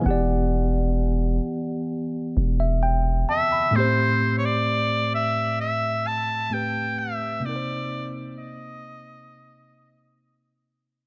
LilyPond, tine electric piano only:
\new Staff \with { instrumentName = "Tine electric piano" } { \time 4/4 \key a \minor \tempo 4 = 65 << { aes''16 r2 r8 e''16 g''8 a''16 b''16~ | b''16 r2. r8. | r1 | } \\ { <e b g' d'' fis''>2.~ <e b g' d'' fis''>8 r8 | <a, a b c' g' c''>2. <a, a c' g' b'>4 | <c bes c' ees' bes' c''>1 | } >> }